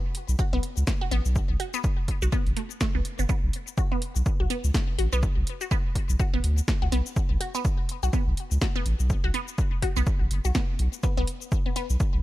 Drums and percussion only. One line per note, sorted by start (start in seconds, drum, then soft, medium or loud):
0.15 closed hi-hat medium
0.29 cabasa medium
0.39 kick loud
0.39 cabasa soft
0.63 closed hi-hat medium
0.77 cabasa medium
0.87 kick loud
0.87 snare loud
0.87 cabasa soft
1.11 closed hi-hat medium
1.26 cabasa medium
1.36 kick loud
1.36 cabasa soft
1.60 closed hi-hat medium
1.74 cabasa medium
1.84 kick loud
1.84 cabasa soft
2.08 kick medium
2.08 closed hi-hat medium
2.22 cabasa medium
2.32 kick loud
2.32 cabasa soft
2.47 closed hi-hat soft
2.57 closed hi-hat medium
2.71 cabasa medium
2.81 kick loud
2.81 snare loud
2.81 cabasa soft
3.05 closed hi-hat medium
3.19 cabasa medium
3.29 kick loud
3.29 cabasa soft
3.53 closed hi-hat loud
3.67 cabasa medium
3.78 kick loud
3.78 cabasa soft
4.02 closed hi-hat medium
4.16 cabasa medium
4.26 kick loud
4.26 cabasa soft
4.50 closed hi-hat medium
4.64 cabasa medium
4.74 kick loud
4.74 snare loud
4.74 cabasa soft
4.99 closed hi-hat medium
5.13 cabasa medium
5.23 kick loud
5.23 cabasa soft
5.47 closed hi-hat loud
5.61 cabasa medium
5.71 kick loud
5.71 cabasa soft
5.95 kick medium
5.95 closed hi-hat loud
6.10 cabasa medium
6.20 kick loud
6.20 cabasa soft
6.44 closed hi-hat loud
6.58 cabasa medium
6.68 kick loud
6.68 snare loud
6.68 cabasa soft
6.92 closed hi-hat medium
7.06 cabasa medium
7.16 kick loud
7.16 cabasa soft
7.41 closed hi-hat loud
7.55 cabasa medium
7.65 kick loud
7.65 cabasa soft
7.89 closed hi-hat loud
8.03 cabasa soft
8.13 kick loud
8.13 cabasa soft
8.37 closed hi-hat medium
8.51 cabasa medium
8.62 kick loud
8.62 snare loud
8.62 cabasa soft
8.86 closed hi-hat loud
9.00 cabasa soft
9.10 kick loud
9.10 cabasa soft
9.34 closed hi-hat loud
9.48 cabasa medium
9.58 kick loud
9.58 cabasa soft
9.82 kick medium
9.82 closed hi-hat loud
9.96 cabasa soft
10.07 kick loud
10.07 cabasa soft
10.31 closed hi-hat medium
10.45 cabasa medium
10.55 kick loud
10.55 snare loud
10.55 cabasa soft
10.79 closed hi-hat medium
10.93 cabasa soft
11.03 kick loud
11.03 cabasa soft
11.27 closed hi-hat loud
11.42 cabasa medium
11.52 kick loud
11.52 cabasa soft
11.76 closed hi-hat medium
11.90 cabasa medium
12.00 kick loud
12.00 cabasa soft